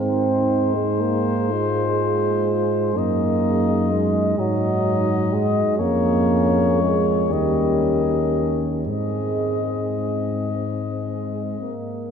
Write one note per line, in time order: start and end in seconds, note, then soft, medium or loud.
0.00 2.97 G#2 soft
0.00 0.76 C4 medium
0.00 1.46 D#4 soft
0.00 4.34 G#4 soft
0.00 2.99 C5 soft
0.75 1.02 G#3 medium
1.01 1.53 A#3 medium
1.50 2.97 G#3 medium
1.50 2.92 F4 soft
2.94 4.37 F#2 soft
2.94 3.91 A#3 medium
2.94 4.34 D#4 soft
2.94 4.38 D#5 soft
3.92 4.40 G#3 medium
4.38 5.62 G#2 soft
4.38 5.34 F#3 medium
4.38 5.77 D#4 soft
4.38 5.77 F#4 soft
4.38 5.77 D#5 soft
5.33 5.81 G#3 medium
5.78 7.31 F2 medium
5.78 6.82 A#3 medium
5.78 7.14 C#4 soft
5.78 7.27 G#4 soft
5.78 7.34 C#5 medium
6.80 7.32 G#3 medium
7.30 8.88 D#2 soft
7.30 8.57 G3 medium
7.30 8.84 C#4 soft
7.30 8.70 A#4 soft
7.30 8.71 D#5 soft
8.87 11.78 G#2 soft
8.87 10.47 G#3 soft
8.87 11.74 C4 soft
8.87 10.48 G#4 soft
8.87 11.75 D#5 soft
10.51 11.55 G#3 soft
11.59 12.11 A#3 soft